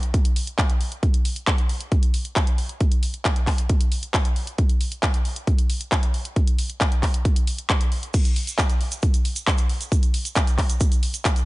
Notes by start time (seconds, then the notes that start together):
0.03 closed hi-hat
0.14 kick, closed hi-hat
0.25 closed hi-hat
0.36 open hi-hat
0.47 closed hi-hat
0.58 kick, clap, closed hi-hat
0.70 closed hi-hat
0.81 open hi-hat
0.92 closed hi-hat
1.03 kick, closed hi-hat
1.14 closed hi-hat
1.25 open hi-hat
1.36 closed hi-hat
1.47 kick, clap, closed hi-hat
1.58 closed hi-hat
1.69 open hi-hat
1.81 closed hi-hat
1.92 kick, closed hi-hat
2.03 closed hi-hat
2.14 open hi-hat
2.25 closed hi-hat
2.36 kick, clap, closed hi-hat
2.47 closed hi-hat
2.58 open hi-hat
2.69 closed hi-hat
2.81 kick, closed hi-hat
2.92 closed hi-hat
3.03 open hi-hat
3.14 closed hi-hat
3.25 kick, clap, closed hi-hat
3.36 closed hi-hat
3.47 kick, clap, open hi-hat
3.58 closed hi-hat
3.69 kick, closed hi-hat
3.81 closed hi-hat
3.92 open hi-hat
4.03 closed hi-hat
4.14 kick, clap, closed hi-hat
4.25 closed hi-hat
4.36 open hi-hat
4.47 closed hi-hat
4.58 kick, closed hi-hat
4.69 closed hi-hat
4.81 open hi-hat
4.92 closed hi-hat
5.03 kick, clap, closed hi-hat
5.14 closed hi-hat
5.25 open hi-hat
5.36 closed hi-hat
5.47 kick, closed hi-hat
5.59 closed hi-hat
5.70 open hi-hat
5.81 closed hi-hat
5.92 kick, clap, closed hi-hat
6.03 closed hi-hat
6.14 open hi-hat
6.25 closed hi-hat
6.36 kick, closed hi-hat
6.47 closed hi-hat
6.59 open hi-hat
6.70 closed hi-hat
6.81 kick, clap, closed hi-hat
6.92 closed hi-hat
7.03 kick, clap, open hi-hat
7.14 closed hi-hat
7.25 kick, closed hi-hat
7.36 closed hi-hat
7.47 open hi-hat
7.58 closed hi-hat
7.70 kick, clap, closed hi-hat
7.81 closed hi-hat
7.92 open hi-hat
8.03 closed hi-hat
8.14 kick, closed hi-hat, crash, cabasa
8.25 closed hi-hat, cabasa
8.36 open hi-hat
8.47 closed hi-hat, cabasa
8.58 kick, clap, closed hi-hat, cabasa
8.70 closed hi-hat, cabasa
8.81 open hi-hat
8.92 closed hi-hat, cabasa
9.02 kick, closed hi-hat, cabasa
9.14 closed hi-hat, cabasa
9.25 open hi-hat
9.36 closed hi-hat, cabasa
9.47 kick, clap, closed hi-hat, cabasa
9.58 closed hi-hat, cabasa
9.70 open hi-hat
9.81 closed hi-hat, cabasa
9.92 kick, closed hi-hat, cabasa
10.03 closed hi-hat, cabasa
10.14 open hi-hat
10.25 closed hi-hat, cabasa
10.36 kick, clap, closed hi-hat, cabasa
10.47 closed hi-hat, cabasa
10.58 kick, clap, open hi-hat
10.69 closed hi-hat, cabasa
10.80 kick, closed hi-hat, cabasa
10.92 closed hi-hat, cabasa
11.03 open hi-hat
11.14 closed hi-hat, cabasa
11.25 kick, clap, closed hi-hat, cabasa
11.36 closed hi-hat, cabasa